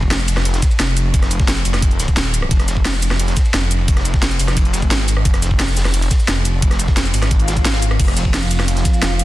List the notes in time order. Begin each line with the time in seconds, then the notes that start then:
Already playing: F1
0.02 kick
0.11 snare, closed hi-hat, open hi-hat
0.19 ride, shaker
0.28 closed hi-hat, ride, shaker
0.37 cross-stick, snare, ride, shaker
0.45 closed hi-hat, ride
0.54 snare, closed hi-hat
0.62 kick, snare, closed hi-hat, ride, shaker
0.71 ride, shaker
0.79 F1, snare, closed hi-hat, ride
0.97 closed hi-hat, ride, shaker
1.14 kick, closed hi-hat, ride
1.22 cross-stick, snare, closed hi-hat
1.31 closed hi-hat, ride, shaker
1.40 kick, snare
1.48 snare, closed hi-hat, ride
1.57 snare, shaker
1.65 F1, open hi-hat, ride, shaker
1.74 cross-stick, snare, closed hi-hat, shaker
1.82 kick, closed hi-hat, ride
1.91 closed hi-hat
2.00 snare, closed hi-hat, ride, shaker
2.08 kick, ride, shaker
2.16 D#1, snare, closed hi-hat, ride
2.25 snare
2.34 closed hi-hat, ride, shaker
2.42 cross-stick
2.51 F1, kick, closed hi-hat, ride
2.60 cross-stick, snare, closed hi-hat
2.68 snare, closed hi-hat, ride, shaker
2.77 kick
2.85 snare, closed hi-hat, open hi-hat
2.94 ride, shaker
3.02 closed hi-hat, ride, shaker
3.11 cross-stick, snare, ride, shaker
3.20 closed hi-hat, ride
3.28 snare, closed hi-hat
3.37 kick, snare, closed hi-hat, ride, shaker
3.45 ride, shaker
3.53 F1, snare, closed hi-hat, ride
3.71 closed hi-hat, ride, shaker
3.88 kick, closed hi-hat, ride
3.97 cross-stick, snare, closed hi-hat
4.05 closed hi-hat, ride, shaker
4.14 kick, snare
4.22 snare, closed hi-hat, ride
4.30 snare, shaker
4.40 F1, open hi-hat, ride, shaker
4.48 cross-stick, snare, closed hi-hat, shaker
4.57 kick, closed hi-hat, ride
4.65 closed hi-hat
4.73 snare, closed hi-hat, ride, shaker
4.82 kick, ride, shaker
4.91 G#1, snare, closed hi-hat, ride
5.00 snare
5.08 closed hi-hat, ride, shaker
5.17 cross-stick
5.25 F1, kick, closed hi-hat, ride
5.33 cross-stick, snare, closed hi-hat
5.42 snare, closed hi-hat, ride, shaker
5.51 kick
5.59 snare, closed hi-hat, open hi-hat
5.68 ride, shaker
5.77 snare, closed hi-hat, open hi-hat, shaker
5.85 cross-stick, snare, ride, shaker
5.94 closed hi-hat, ride
6.02 closed hi-hat, ride
6.11 kick, snare, closed hi-hat, ride, shaker
6.20 ride, shaker
6.28 F1, snare, closed hi-hat, ride
6.45 closed hi-hat, ride, shaker
6.62 kick, closed hi-hat, ride
6.71 cross-stick, snare, closed hi-hat
6.79 closed hi-hat, ride, shaker
6.88 kick, snare
6.97 snare, closed hi-hat, ride
7.05 snare, shaker
7.14 G#1, open hi-hat, ride, shaker
7.22 cross-stick, snare, closed hi-hat, shaker
7.31 kick, closed hi-hat, ride, swell
7.40 closed hi-hat
7.48 snare, closed hi-hat, ride, shaker
7.57 kick, closed hi-hat, shaker
7.65 snare, closed hi-hat
7.73 snare, ride
7.82 closed hi-hat, shaker
7.91 cross-stick, ride
8.00 F1 F3 C4 F4 F5, kick, closed hi-hat, crash, ride
8.08 cross-stick, snare, closed hi-hat
8.17 snare, closed hi-hat, ride, shaker
8.25 kick
8.34 snare, closed hi-hat, open hi-hat
8.42 ride, shaker
8.51 closed hi-hat, ride, shaker
8.59 cross-stick, snare, ride, shaker
8.68 closed hi-hat, ride
8.77 snare, closed hi-hat
8.85 kick, snare, closed hi-hat, ride, shaker
8.93 ride, shaker
9.02 F1, snare, closed hi-hat, ride
9.19 closed hi-hat, ride, shaker